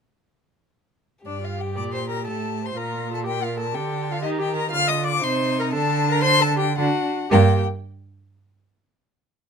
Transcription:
1.25 cello G2, viola D4, violin G4 D5
1.43 viola F4, violin F5
1.59 viola G4, violin G5
1.76 cello A#2, viola D5, violin D6
1.93 viola C5, violin C6
2.10 viola A#4, violin A#5
2.26 cello A2, viola A4, violin A5
2.65 viola C5, violin C6
2.76 cello A#2, violin F4 A#5, viola A#4
3.13 viola A4, violin A5
3.24 viola G4, violin A#4 G5
3.40 viola F4
3.44 violin F5
3.57 viola A4, violin A5
3.73 cello D3, viola G4, violin A4 G5
4.11 viola F4, violin F5
4.23 cello D#3, viola D#4, violin G4 D#5
4.39 viola G4, violin G5
4.55 viola A#4, violin A#5
4.71 cello D3, violin F4 F6, viola F5
4.88 viola D#5, violin D#6
5.05 viola D5, violin D6
5.21 cello C3, violin D#4 C6, viola C5
5.60 viola A#4, violin A#5
5.72 cello D3, violin D4 A5, viola A4
6.11 viola A#4, violin A#5
6.22 viola C5, violin C6
6.41 viola A4, violin A5
6.58 viola G4, violin G5
6.76 cello D3, violin D4 F#5, viola F#4
7.30 cello G2, violin A#3 G5, viola G4

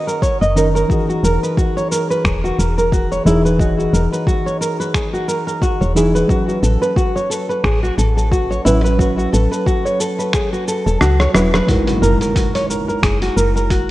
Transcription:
Already playing: synth keys D#3 C#4 A#5
0.07 nylon-string guitar A#4, shaker
0.22 nylon-string guitar C#5, kick, shaker
0.41 fm bass F#1, nylon-string guitar D#5, shaker
0.55 synth keys D#3 C#4 A#4, nylon-string guitar D#4, shaker
0.75 nylon-string guitar A#4, shaker
0.88 synth keys E3 D#4 G#4, nylon-string guitar F#4, kick, shaker
1.09 nylon-string guitar F#4, shaker
1.23 fm bass E1, nylon-string guitar A#4, shaker
1.43 nylon-string guitar B4, shaker
1.57 nylon-string guitar F#4, kick, shaker
1.77 nylon-string guitar C#5, shaker
1.91 nylon-string guitar A#4, shaker
2.10 nylon-string guitar B4, shaker
2.25 fm bass E1, nylon-string guitar G#4, finger snap, kick, shaker
2.44 nylon-string guitar F#4, shaker
2.58 fm bass E1, nylon-string guitar A#4, shaker
2.78 nylon-string guitar A#4, shaker
2.92 nylon-string guitar F#4, kick, shaker
3.12 nylon-string guitar C#5, shaker
3.25 fm bass E1, synth keys E3 D#4 G#4, nylon-string guitar E4, shaker
3.45 nylon-string guitar B4, shaker
3.58 synth keys E3 G#4 D#5, nylon-string guitar F#4, kick, shaker
3.79 nylon-string guitar F#4, shaker
3.93 fm bass E1, nylon-string guitar A#4, shaker
4.13 nylon-string guitar B4, shaker
4.27 nylon-string guitar F#4, kick, shaker
4.46 nylon-string guitar C#5, shaker
4.61 nylon-string guitar A#4, shaker
4.80 nylon-string guitar B4, shaker
4.94 nylon-string guitar G#4, finger snap, kick, shaker
5.13 nylon-string guitar F#4, shaker
5.28 nylon-string guitar A#4, shaker
5.47 nylon-string guitar A#4, shaker
5.62 nylon-string guitar F#4, kick, shaker
5.81 fm bass E1, nylon-string guitar C#5, shaker
5.95 synth keys E3 D#4 G#4, nylon-string guitar E4, shaker
6.15 nylon-string guitar B4, shaker
6.28 synth keys F#3 C#4 B4, nylon-string guitar F#4, kick, shaker
6.48 nylon-string guitar F#4, shaker
6.63 fm bass A1, nylon-string guitar A4, shaker
6.82 nylon-string guitar B4, shaker
6.97 nylon-string guitar F#4, kick, shaker
7.16 nylon-string guitar C#5, shaker
7.30 nylon-string guitar A4, shaker
7.50 nylon-string guitar B4, shaker
7.64 fm bass A1, nylon-string guitar G#4, finger snap, kick, shaker
7.83 nylon-string guitar F#4, shaker
7.98 fm bass A1, nylon-string guitar A4, shaker
8.17 nylon-string guitar A4, shaker
8.31 nylon-string guitar F#4, kick, shaker
8.50 nylon-string guitar C#5, shaker
8.65 fm bass A1, synth keys F#3 C#4 B4, nylon-string guitar E4, shaker
8.84 nylon-string guitar B4, shaker
8.97 synth keys F#3 C#4, nylon-string guitar F#4, kick, shaker
9.02 synth keys B4
9.17 nylon-string guitar F#4, shaker
9.32 fm bass A1, nylon-string guitar A4, shaker
9.51 nylon-string guitar B4, shaker
9.66 nylon-string guitar F#4, kick, shaker
9.85 nylon-string guitar C#5, shaker
10.00 nylon-string guitar A4, shaker
10.19 nylon-string guitar B4, shaker
10.33 nylon-string guitar G#4, finger snap, kick, shaker
10.52 nylon-string guitar F#4, shaker
10.67 nylon-string guitar A4, shaker
10.86 fm bass E1, nylon-string guitar A4, shaker
11.01 fm bass C#2, nylon-string guitar F#4, cross-stick, shaker
11.20 nylon-string guitar C#5, cross-stick, shaker
11.34 fm bass E1, synth keys F#3 C#4 B4, nylon-string guitar E4, cross-stick, shaker
11.54 nylon-string guitar B4, cross-stick, shaker
11.67 synth keys G#3 D#4 E4, nylon-string guitar F#4, kick, open hi-hat, impact, shaker
11.71 synth keys A#4
11.87 nylon-string guitar F#4, open hi-hat, shaker
12.02 fm bass F#1, nylon-string guitar A#4, shaker
12.21 nylon-string guitar A#4, open hi-hat, shaker
12.36 nylon-string guitar F#4, kick, open hi-hat, shaker
12.55 nylon-string guitar C#5, open hi-hat, shaker
12.70 nylon-string guitar A#4, shaker
12.88 nylon-string guitar A#4, shaker
13.03 fm bass F#1, nylon-string guitar G#4, finger snap, kick, open hi-hat, shaker
13.22 nylon-string guitar F#4, open hi-hat, shaker
13.37 fm bass F#1, nylon-string guitar A#4, shaker
13.56 nylon-string guitar A#4, shaker
13.71 nylon-string guitar F#4, kick, open hi-hat, shaker

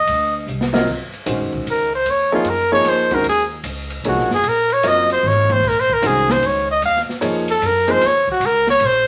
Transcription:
Already playing: trumpet D#5
0.07 upright bass D2, ride
0.47 upright bass C2, hi-hat pedal
0.61 snare
0.73 grand piano F#3 C4 F4 A#4 D#5, snare
0.87 upright bass D#2, kick, crash
1.13 muted upright bass stroke, ride
1.26 upright bass A#1, grand piano D#3 G#3 C#4 F#4 C5, hi-hat pedal, ride
1.39 upright bass F#1
1.53 upright bass D#1, kick
1.65 upright bass C#2, ride
1.70 trumpet A#4
1.95 trumpet C5
2.05 upright bass D#2, ride
2.10 trumpet C#5
2.32 grand piano F3 A#3 D#4 G#4 C#5, trumpet F4
2.44 upright bass F#2, ride
2.49 trumpet A#4
2.72 grand piano F3 A#3 D#4 G#4 C#5, trumpet C#5
2.85 upright bass F2, snare, hi-hat pedal, ride
2.89 trumpet C5
3.11 grand piano D#3 G#3 C#4 F#4 C5, trumpet A#4, kick, ride
3.24 upright bass D#2, ride
3.29 trumpet G#4
3.63 upright bass C#2, hi-hat pedal, ride
3.90 ride
4.04 upright bass C2, grand piano F3 A#3 D#4 G#4 C#5, ride
4.09 trumpet F#4
4.17 upright bass A#1, snare
4.30 upright bass F#1, snare
4.34 trumpet G#4
4.44 upright bass A#1, ride
4.48 trumpet A#4
4.70 trumpet C#5, ride
4.83 upright bass F#1, grand piano F#3 C4 F4 A#4 D#5, hi-hat pedal, ride
4.88 trumpet D#5
5.10 trumpet C5, ride
5.23 upright bass G#1, mid tom
5.28 trumpet C#5
5.36 floor tom
5.50 trumpet C5, floor tom
5.63 upright bass A#1, kick, crash
5.68 trumpet A#4
5.80 trumpet C5
5.90 kick
5.94 trumpet A#4
6.02 upright bass C2, grand piano D#3 G#3 C#4 F#4 C5, hi-hat pedal, ride
6.07 trumpet G#4
6.29 trumpet C5, snare
6.43 upright bass C#2, trumpet C#5, ride
6.71 trumpet D#5
6.82 upright bass D#2, trumpet F5, ride
6.96 snare
7.09 muted upright bass stroke, snare
7.21 upright bass F2, grand piano F3 A#3 D#4 G#4 C#5, hi-hat pedal, ride
7.48 trumpet A4, ride
7.62 upright bass F#2, hi-hat pedal, ride
7.66 trumpet A#4
7.87 grand piano F3 A#3 D#4 G#4 C5, trumpet C5, ride
8.01 upright bass D#2, snare, ride
8.06 trumpet C#5
8.27 muted upright bass stroke, kick
8.31 trumpet F#4
8.40 upright bass C#2, hi-hat pedal, ride
8.46 trumpet A#4
8.67 trumpet C#5, snare
8.80 upright bass A#1, ride
8.86 trumpet C5

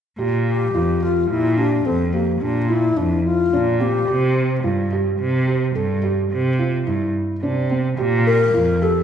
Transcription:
0.18 cello A#2, felt piano G4
0.47 alto flute G4
0.74 cello F2, felt piano F4
1.02 alto flute F4, felt piano G4
1.30 cello A#2, alto flute E4
1.58 alto flute D4, felt piano G4
1.85 cello F2, alto flute C4, felt piano A4
2.14 alto flute A#3, felt piano G4
2.41 cello A#2, alto flute D4
2.69 alto flute E4, felt piano F4
2.97 cello F2, alto flute D4, felt piano E4
3.24 alto flute F4
3.52 cello A#2, felt piano D4
3.80 felt piano C4, alto flute G4
4.08 cello C3, felt piano G4
4.64 cello G2, felt piano F4
4.92 felt piano G4
5.20 cello C3
5.48 felt piano G4
5.75 cello G2, felt piano A4
6.03 felt piano G4
6.31 cello C3
6.59 felt piano F4
6.87 cello G2, felt piano E4
7.43 cello C3, felt piano D4
7.71 felt piano C4
7.98 cello A#2, felt piano G4
8.27 alto flute A#4
8.54 cello F2, felt piano F4
8.82 felt piano G4, alto flute A4

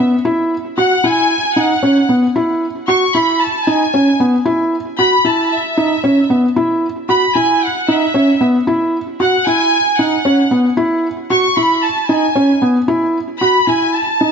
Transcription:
0.00 felt piano B3
0.25 felt piano E4
0.78 felt piano F#4, violin section F#5
1.04 felt piano E4, violin section G#5
1.56 felt piano D#4, violin section F#5
1.83 felt piano C#4
2.09 felt piano B3
2.36 felt piano E4
2.88 felt piano F#4, violin section C#6
3.15 felt piano E4, violin section B5
3.42 violin section A5
3.67 felt piano D#4, violin section G#5
3.94 felt piano C#4
4.20 felt piano B3
4.45 felt piano E4
4.99 felt piano F#4, violin section B5
5.25 felt piano E4, violin section A5
5.54 violin section E5
5.77 felt piano D#4
6.04 felt piano C#4
6.30 felt piano B3
6.56 felt piano E4
7.09 felt piano F#4, violin section B5
7.34 felt piano E4, violin section G#5
7.62 violin section F#5
7.88 felt piano D#4, violin section E5
8.14 felt piano C#4
8.41 felt piano B3
8.67 felt piano E4
9.20 felt piano F#4, violin section F#5
9.46 felt piano E4, violin section G#5
9.99 felt piano D#4, violin section F#5
10.25 felt piano C#4
10.51 felt piano B3
10.77 felt piano E4
11.30 felt piano F#4, violin section C#6
11.57 felt piano E4, violin section B5
11.84 violin section A5
12.09 felt piano D#4, violin section G#5
12.35 felt piano C#4
12.62 felt piano B3
12.88 felt piano E4
13.41 felt piano F#4, violin section B5
13.67 felt piano E4, violin section G#5
13.94 violin section A5
14.21 felt piano D#4

